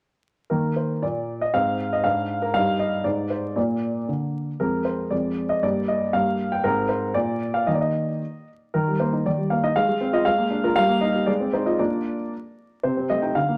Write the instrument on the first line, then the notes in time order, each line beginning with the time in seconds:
grand piano
0.50 D#3 A#3 A#4
0.76 C5
1.02 A#2 D5
1.41 D#5
1.54 G#2 C4 F5
1.93 D#5
2.04 G#2 D4 F5
2.42 A#4
2.54 G2 D#4 F5
2.79 D#5
3.04 G#2 D#4 D5
3.30 C5
3.56 A#2 A#3 D5
4.08 D3
4.60 F2 G#3 A#4
4.85 C5
5.10 F2 G#3 D5
5.49 D#5
5.63 G2 A#3 D5
5.88 D#5
6.13 G2 A#3 F5
6.52 G5
6.64 G#2 C4 A#4
6.89 C5
7.14 A#2 A#3 D5
7.54 F5
7.67 D#3 A#3 D#4 D#5
7.74 D5
7.81 D#5
8.74 D#3 A#4
8.88 G3
9.00 A#3 C5
9.13 D#4
9.26 D#3 D5
9.38 G3
9.50 A#3 F5
9.63 D#4 D#5
9.76 G#3 F5
9.88 G#3
10.01 C4
10.13 F4 D#5
10.25 G#3 F5
10.38 A#3
10.51 D4
10.64 F4 A#4
10.76 G3 F5
10.89 A#3
11.01 D#4 D#5
11.15 G4
11.26 G#3 D5
11.40 C4
11.53 D#4 C5
11.66 F4 D#5
11.79 A#3 D4 F4 D5
12.83 C3 C5
12.97 C4
13.10 A3 D#5
13.22 D#4 G5
13.35 D3 F5
13.48 A#3